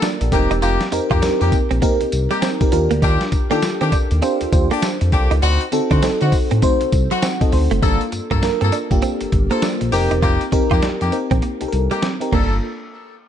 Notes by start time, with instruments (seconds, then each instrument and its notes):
Already playing: fm electric piano A#3 D4 F4 A4 F#5 A5
0.02 clean electric guitar D4, fm electric piano A#4 D5, snare, closed hi-hat, tambourine
0.21 analog synth bass A#1, fm electric piano G4 A#4, muted clean electric guitar stroke, closed hi-hat
0.32 analog synth bass F1, horn section A#3 D#4 G4, fm electric piano C4 D#4 G4 A#4, kick, closed hi-hat
0.51 analog synth bass E1, clean electric guitar D#4, closed hi-hat
0.62 analog synth bass F1, horn section A#3 D#4 G4, clean electric guitar F4, closed hi-hat, tambourine
0.81 snare, closed hi-hat
0.92 analog synth bass F2, fm electric piano C4 D#4 G4 A#4, muted clean electric guitar stroke, closed hi-hat, tambourine
1.10 analog synth bass F2, horn section A#3 D#4 G4, clean electric guitar F4, kick, closed hi-hat
1.22 analog synth bass F2, fm electric piano C4 D#4 G4 A#4, clean electric guitar D4, snare, closed hi-hat, tambourine
1.40 analog synth bass F2, horn section A#3 D#4 G4, fm electric piano C4 D#4 G4 A#4, muted clean electric guitar stroke, closed hi-hat
1.52 kick, closed hi-hat, tambourine
1.71 analog synth bass A#1, clean electric guitar C4, closed hi-hat
1.82 clean electric guitar A#3, fm electric piano C4 D#4 G4 A#4, kick, closed hi-hat, tambourine
2.01 analog synth bass C2, muted clean electric guitar stroke, closed hi-hat
2.12 analog synth bass C2, closed hi-hat, tambourine
2.31 clean electric guitar G3, horn section A#3 D#4 G4, closed hi-hat
2.42 clean electric guitar C4, snare, closed hi-hat, tambourine
2.60 fm electric piano C4 D#4 G4 A#4, kick, closed hi-hat
2.72 analog synth bass D#2, fm electric piano D4 F4 G4 A#4, muted clean electric guitar stroke, closed hi-hat
2.91 analog synth bass D2, clean electric guitar A#3, closed hi-hat
3.02 analog synth bass D#2, horn section D4 F4 G4, clean electric guitar D#4, kick, closed hi-hat, tambourine
3.21 snare, closed hi-hat
3.32 analog synth bass D#3, muted clean electric guitar stroke, kick, closed hi-hat, tambourine
3.50 analog synth bass D#3, clean electric guitar A#3, fm electric piano D4 F4 G4 A4, horn section D4 F4 G4, closed hi-hat
3.62 analog synth bass D#3, muted clean electric guitar stroke, snare, closed hi-hat, tambourine
3.81 analog synth bass D#3, clean electric guitar C4, horn section D4 F4 G4, closed hi-hat
3.92 clean electric guitar D4, kick, closed hi-hat, tambourine
4.11 analog synth bass D#2, closed hi-hat
4.22 clean electric guitar C4, fm electric piano D4 F4 G4 C5, closed hi-hat, tambourine
4.41 analog synth bass D#2, muted clean electric guitar stroke, closed hi-hat
4.52 analog synth bass D#2, fm electric piano D4 F4 G4 C5, kick, closed hi-hat, tambourine
4.71 clean electric guitar A#3, horn section D4 F4 G4, closed hi-hat
4.82 clean electric guitar D4, snare, closed hi-hat, tambourine
5.01 analog synth bass F2, muted clean electric guitar stroke, closed hi-hat
5.12 analog synth bass C2, horn section D4 F4 G4, kick, closed hi-hat
5.31 analog synth bass C#2, clean electric guitar D#4, closed hi-hat
5.42 analog synth bass D2, horn section C4 D#4 F#4, clean electric guitar D4, closed hi-hat, tambourine
5.61 closed hi-hat
5.72 analog synth bass D3, fm electric piano C4 D#4 F#4 A4, muted clean electric guitar stroke, closed hi-hat, tambourine
5.91 analog synth bass D3, horn section C4 D#4 F#4, clean electric guitar D4, kick, closed hi-hat
6.02 analog synth bass D3, fm electric piano C4 D#4 F#4 A4, clean electric guitar C4, snare, closed hi-hat, tambourine
6.21 analog synth bass D3, fm electric piano C4 D#4 F#4 C5, horn section C4 D#4 F#4, muted clean electric guitar stroke, closed hi-hat
6.32 kick, open hi-hat, tambourine
6.51 analog synth bass A2, clean electric guitar C4, closed hi-hat
6.62 clean electric guitar A3, fm electric piano C4 D#4 F#4 C5, kick, closed hi-hat, tambourine
6.81 analog synth bass C2, muted clean electric guitar stroke, closed hi-hat
6.92 analog synth bass C2, kick, closed hi-hat, tambourine
7.11 clean electric guitar F#3, horn section C4 D#4 F#4, closed hi-hat
7.22 clean electric guitar C4, fm electric piano F#5, snare, closed hi-hat, tambourine
7.40 fm electric piano C4 D#4 F#4 A4 D#5, kick, closed hi-hat
7.52 analog synth bass D2, fm electric piano C4 D#4 F#4 C5, muted clean electric guitar stroke, open hi-hat
7.71 analog synth bass F#1, clean electric guitar A3, closed hi-hat
7.82 analog synth bass G1, clean electric guitar G3, fm electric piano A#3 D4 F4 A4, horn section A#3 F4 A4, kick, closed hi-hat, tambourine
8.01 closed hi-hat
8.12 analog synth bass G2, muted clean electric guitar stroke, closed hi-hat, tambourine
8.31 analog synth bass G2, horn section A#3 F4 A4, clean electric guitar A#3, kick, closed hi-hat
8.42 analog synth bass G2, fm electric piano A#3 D4 F4 A#4, muted clean electric guitar stroke, snare, closed hi-hat, tambourine
8.61 analog synth bass G2, horn section A#3 F4 A4, clean electric guitar C4, closed hi-hat
8.72 clean electric guitar D4, closed hi-hat, tambourine
8.90 analog synth bass G1, fm electric piano A#3 D4 F4 G4, kick, closed hi-hat
9.02 clean electric guitar C4, closed hi-hat, tambourine
9.21 analog synth bass G1, muted clean electric guitar stroke, closed hi-hat
9.32 analog synth bass G1, kick, closed hi-hat
9.51 fm electric piano A#3 D4 F4 C5, horn section A#3 F4 A4, clean electric guitar A#3, closed hi-hat
9.62 clean electric guitar D4, snare, closed hi-hat, tambourine
9.81 analog synth bass A#1, muted clean electric guitar stroke, closed hi-hat
9.92 analog synth bass F1, horn section A#3 D#4 G4, fm electric piano C4 D#4 G4 A#4, open hi-hat, tambourine
10.11 analog synth bass E1, clean electric guitar D#4, closed hi-hat
10.22 analog synth bass F1, horn section A#3 D#4 G4, clean electric guitar F4, kick, closed hi-hat
10.41 closed hi-hat
10.52 analog synth bass F2, fm electric piano C4 D#4 G4 A#4, muted clean electric guitar stroke, kick, closed hi-hat
10.71 analog synth bass F2, horn section A#3 D#4 G4, clean electric guitar F4, kick, closed hi-hat
10.82 analog synth bass F2, clean electric guitar D4, snare, closed hi-hat
11.00 analog synth bass F2, horn section A#3 D#4 G4, muted clean electric guitar stroke, closed hi-hat
11.12 fm electric piano C4 D#4 G4 A#4, closed hi-hat
11.31 analog synth bass A#1, clean electric guitar C4, kick, closed hi-hat
11.42 clean electric guitar A#3, closed hi-hat
11.61 analog synth bass C2, fm electric piano C4 D#4 G4 A4, muted clean electric guitar stroke, closed hi-hat
11.68 fm electric piano A#4
11.73 analog synth bass C2, closed hi-hat
11.91 clean electric guitar G3, horn section A#3 D#4 G4, closed hi-hat
12.02 clean electric guitar C4, snare, closed hi-hat
12.21 fm electric piano C4 D#4 G4 A#4, closed hi-hat
12.32 analog synth bass G1, horn section A#3 F4 A4, fm electric piano A#3 D4 F4 A4, clean electric guitar A#3, kick, crash